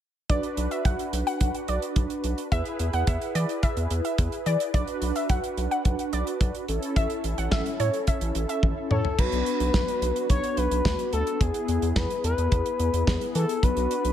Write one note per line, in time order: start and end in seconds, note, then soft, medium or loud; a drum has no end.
0.29 0.40 B1 loud
0.29 2.48 D4 medium
0.29 2.48 F#4 medium
0.29 2.48 B4 medium
0.29 0.39 D5 medium
0.29 kick medium
0.29 closed hi-hat medium
0.43 closed hi-hat soft
0.57 0.68 B1 loud
0.57 closed hi-hat medium
0.71 0.81 E5 medium
0.71 closed hi-hat medium
0.85 0.95 B1 loud
0.85 0.95 F#5 medium
0.85 kick loud
0.85 closed hi-hat medium
0.99 closed hi-hat soft
1.13 1.23 B1 medium
1.13 closed hi-hat medium
1.27 1.46 F#5 medium
1.27 closed hi-hat soft
1.40 1.51 B1 loud
1.40 kick loud
1.40 closed hi-hat medium
1.54 closed hi-hat medium
1.68 1.79 B1 medium
1.68 1.78 D5 medium
1.68 closed hi-hat medium
1.82 closed hi-hat medium
1.96 2.06 B1 loud
1.96 kick loud
1.96 closed hi-hat medium
2.10 closed hi-hat soft
2.24 2.34 B1 medium
2.24 closed hi-hat medium
2.38 closed hi-hat medium
2.52 2.62 E2 loud
2.52 4.70 E4 medium
2.52 4.70 G#4 medium
2.52 4.70 B4 medium
2.52 2.62 E5 loud
2.52 kick loud
2.52 closed hi-hat medium
2.65 closed hi-hat soft
2.79 2.90 E2 loud
2.79 closed hi-hat medium
2.93 3.04 E2 medium
2.93 3.03 F#5 medium
2.93 closed hi-hat medium
3.07 3.18 E2 loud
3.07 3.27 E5 medium
3.07 kick loud
3.07 closed hi-hat medium
3.21 closed hi-hat soft
3.35 3.45 E3 loud
3.35 3.45 D5 medium
3.35 closed hi-hat medium
3.49 closed hi-hat soft
3.63 3.73 E5 medium
3.63 kick loud
3.63 closed hi-hat medium
3.77 3.87 E2 medium
3.77 closed hi-hat medium
3.90 4.01 E2 medium
3.90 closed hi-hat medium
4.05 4.14 E5 medium
4.05 closed hi-hat medium
4.18 4.29 E2 loud
4.18 kick loud
4.18 closed hi-hat medium
4.32 closed hi-hat soft
4.46 4.56 E3 medium
4.46 4.56 D5 medium
4.46 closed hi-hat medium
4.60 closed hi-hat medium
4.74 4.84 B1 loud
4.74 6.65 D4 medium
4.74 6.65 F#4 medium
4.74 6.65 B4 medium
4.74 4.84 D5 medium
4.74 kick loud
4.74 closed hi-hat medium
4.87 closed hi-hat soft
5.02 5.12 B1 medium
5.02 closed hi-hat medium
5.16 5.26 E5 medium
5.16 closed hi-hat medium
5.29 5.40 B1 loud
5.29 5.39 F#5 medium
5.29 kick loud
5.29 closed hi-hat medium
5.44 closed hi-hat medium
5.57 5.68 B1 medium
5.57 closed hi-hat medium
5.71 5.91 F#5 medium
5.71 closed hi-hat soft
5.85 5.96 B1 loud
5.85 kick loud
5.85 closed hi-hat medium
5.99 closed hi-hat medium
6.13 6.23 B1 loud
6.13 6.23 D5 medium
6.13 closed hi-hat medium
6.27 closed hi-hat medium
6.41 6.51 B1 loud
6.41 kick loud
6.41 closed hi-hat medium
6.55 closed hi-hat soft
6.68 6.79 A1 loud
6.68 9.14 C#4 medium
6.68 9.14 E4 medium
6.68 9.14 A4 medium
6.68 closed hi-hat medium
6.82 closed hi-hat medium
6.96 7.07 A1 loud
6.96 7.06 E5 loud
6.96 kick loud
6.96 closed hi-hat medium
7.10 closed hi-hat soft
7.24 7.34 A1 medium
7.24 closed hi-hat medium
7.38 7.48 A1 medium
7.38 7.48 F#5 medium
7.38 closed hi-hat medium
7.51 7.62 A1 loud
7.51 7.72 E5 medium
7.51 kick loud
7.51 snare loud
7.66 closed hi-hat soft
7.80 7.90 A2 loud
7.80 7.90 C#5 medium
7.80 closed hi-hat medium
7.93 closed hi-hat soft
8.07 8.17 E5 medium
8.07 kick loud
8.07 closed hi-hat medium
8.21 8.32 A1 medium
8.21 closed hi-hat medium
8.35 8.46 A1 loud
8.35 closed hi-hat medium
8.49 8.59 E5 medium
8.49 closed hi-hat medium
8.63 8.73 A1 medium
8.63 kick loud
8.63 high tom soft
8.91 9.01 A2 medium
8.91 9.20 A4 loud
8.91 9.01 C#5 medium
8.91 mid tom medium
9.05 floor tom medium
9.19 9.29 B1 loud
9.19 11.37 B3 medium
9.19 11.37 D4 medium
9.19 11.37 F#4 medium
9.19 10.29 B4 loud
9.19 kick loud
9.19 crash medium
9.32 9.43 B1 loud
9.32 closed hi-hat soft
9.46 closed hi-hat medium
9.60 9.70 B1 loud
9.60 closed hi-hat medium
9.74 9.84 B1 medium
9.74 kick loud
9.74 snare loud
9.88 closed hi-hat medium
10.02 10.12 B1 medium
10.02 closed hi-hat medium
10.16 closed hi-hat soft
10.30 10.40 B1 medium
10.30 10.59 C#5 loud
10.30 kick loud
10.30 closed hi-hat medium
10.44 closed hi-hat medium
10.57 10.68 B1 loud
10.57 11.13 B4 loud
10.57 closed hi-hat medium
10.71 10.82 B1 medium
10.71 closed hi-hat medium
10.85 10.95 D2 medium
10.85 kick loud
10.85 snare loud
10.99 closed hi-hat soft
11.13 11.23 D2 medium
11.13 11.42 A4 loud
11.13 closed hi-hat medium
11.27 closed hi-hat medium
11.41 11.51 E2 loud
11.41 13.59 B3 medium
11.41 13.59 E4 medium
11.41 13.59 G#4 medium
11.41 11.98 G#4 loud
11.41 kick loud
11.41 closed hi-hat medium
11.54 closed hi-hat soft
11.68 11.79 E2 medium
11.68 closed hi-hat medium
11.82 11.93 E2 medium
11.82 closed hi-hat medium
11.96 12.07 E2 medium
11.96 12.24 B4 loud
11.96 kick loud
11.96 snare loud
12.10 closed hi-hat medium
12.24 12.34 E2 loud
12.24 13.31 B4 loud
12.24 closed hi-hat medium
12.38 12.48 E2 medium
12.38 closed hi-hat soft
12.52 12.62 E2 loud
12.52 kick loud
12.52 closed hi-hat medium
12.66 closed hi-hat medium
12.79 12.90 E2 loud
12.79 closed hi-hat medium
12.93 13.04 E2 loud
12.93 closed hi-hat medium
13.07 13.18 E2 loud
13.07 kick loud
13.07 snare loud
13.21 closed hi-hat medium
13.35 13.45 E3 loud
13.35 13.64 A4 loud
13.35 closed hi-hat medium
13.49 closed hi-hat medium
13.63 13.73 B1 loud
13.63 14.13 B3 medium
13.63 14.13 D4 medium
13.63 14.13 F#4 medium
13.63 14.13 B4 loud
13.63 kick loud
13.63 closed hi-hat medium
13.77 13.87 B1 loud
13.77 closed hi-hat soft
13.91 closed hi-hat medium
14.05 14.13 B1 medium
14.05 closed hi-hat medium